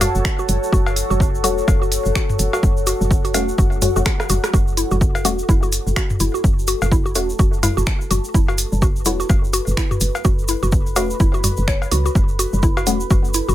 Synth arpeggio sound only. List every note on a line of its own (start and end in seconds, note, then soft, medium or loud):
0.01 0.03 F#4 loud
0.39 0.43 F#4 medium
0.73 0.75 F#4 loud
1.10 1.14 F#4 medium
1.44 1.46 F#4 loud
1.82 1.86 F#4 medium
2.15 2.18 F#4 loud
2.53 2.57 F#4 medium
2.87 2.89 F#4 loud
3.25 3.29 F#4 medium
3.58 3.61 F#4 loud
3.96 4.00 F#4 medium
4.30 4.32 F#4 loud
4.54 4.56 F#4 loud
4.77 4.81 E4 medium
4.91 4.95 F#4 medium
5.25 5.27 F#4 loud
5.49 5.53 E4 medium
5.63 5.67 F#4 medium
5.96 5.99 F#4 loud
6.20 6.24 E4 medium
6.34 6.38 F#4 medium
6.68 6.70 F#4 loud
6.92 6.95 E4 medium
7.06 7.10 F#4 medium
7.39 7.41 F#4 loud
7.63 7.67 E4 medium
7.77 7.81 F#4 medium
8.11 8.13 F#4 loud
8.34 8.38 E4 medium
8.49 8.52 F#4 medium
8.82 8.84 F#4 loud
9.06 9.10 E4 medium
9.20 9.24 F#4 medium
9.53 9.56 F#4 loud
9.77 9.81 E4 medium
9.91 9.95 F#4 medium
10.25 10.27 F#4 loud
10.49 10.52 E4 medium
10.63 10.67 F#4 medium
10.96 10.99 F#4 loud
11.20 11.24 E4 medium
11.34 11.38 F#4 medium
11.44 11.48 F#4 medium
11.68 11.73 C#5 loud
11.91 11.97 F#4 loud
12.06 12.08 F#4 medium
12.39 12.41 F#4 loud
12.63 12.67 E4 medium
12.77 12.81 F#4 medium
13.11 13.13 F#4 loud
13.34 13.38 E4 medium
13.49 13.52 F#4 medium